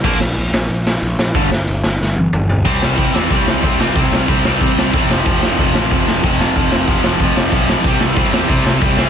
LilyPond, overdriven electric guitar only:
\new Staff \with { instrumentName = "Overdriven electric guitar" } { \clef bass \time 4/4 \key g \dorian \tempo 4 = 184 <bes, f bes>8 r2. r8 | <g, d g>8 r2. r8 | \key f \lydian <c g c'>4 <c g c'>8 <c g c'>8 <c g c'>4 <c g c'>8 <c g c'>8 | <c g c'>4 <c g c'>8 <c g c'>8 <c g c'>4 <c g c'>8 <f, c f>8 |
<f, c f>4 <f, c f>8 <f, c f>8 <f, c f>4 <f, c f>8 <f, c f>8 | <f, c f>4 <f, c f>8 <f, c f>8 <f, c f>4 <f, c f>8 <f, c f>8 | <c g c'>4 <c g c'>8 <c g c'>8 <c g c'>4 <c g c'>8 <c g c'>8 | }